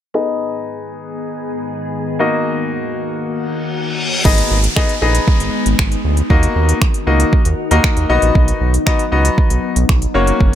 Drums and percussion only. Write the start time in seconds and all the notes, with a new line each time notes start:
4.25 kick, crash
4.38 closed hi-hat
4.64 closed hi-hat
4.76 finger snap, kick
4.89 closed hi-hat
5.15 closed hi-hat
5.28 kick
5.40 closed hi-hat
5.66 closed hi-hat
5.79 finger snap, kick
5.92 closed hi-hat
6.17 closed hi-hat
6.30 kick
6.43 closed hi-hat
6.69 closed hi-hat
6.82 finger snap, kick
6.94 closed hi-hat
7.20 closed hi-hat
7.33 kick
7.45 closed hi-hat
7.71 closed hi-hat
7.84 finger snap, kick
7.97 closed hi-hat
8.22 closed hi-hat
8.35 kick
8.48 closed hi-hat
8.74 closed hi-hat
8.87 finger snap, kick
8.99 closed hi-hat
9.25 closed hi-hat
9.38 kick
9.50 closed hi-hat
9.76 closed hi-hat
9.89 finger snap, kick
10.02 closed hi-hat
10.27 closed hi-hat
10.40 kick